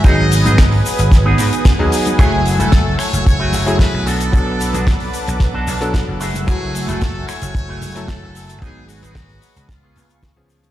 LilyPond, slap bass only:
\new Staff \with { instrumentName = "Slap bass" } { \clef bass \time 4/4 \key fis \minor \tempo 4 = 112 gis,,8. gis,,8. r16 gis,,8. gis,16 r8 dis,16 r8 | fis,,8. fis,,8. r16 fis,,8. fis,,8. b,,8. | b,,8. b,,8. r16 b,,8. b,,8. fis,,8. | fis,,8. fis,,8. r16 fis,,8. fis,,8. fis,,8. |
gis,,8. gis,,8. r16 cis,8. cis,8. cis,8. | }